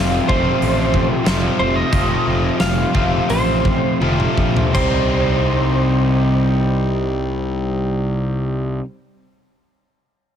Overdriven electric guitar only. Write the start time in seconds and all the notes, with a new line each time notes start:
Already playing: F2 C3 F3 A3 C4 F4
0.28 F2 C3 F3 A3 C4 F4
1.24 F2 C3 F3 A3 C4 F4
1.91 F2 C3 F3 A3 C4 F4
2.93 F2 C3 F3 A3 C4 F4
4.00 F2 C3 F3 A3 C4 F4
4.73 C3 G3 C4 D#4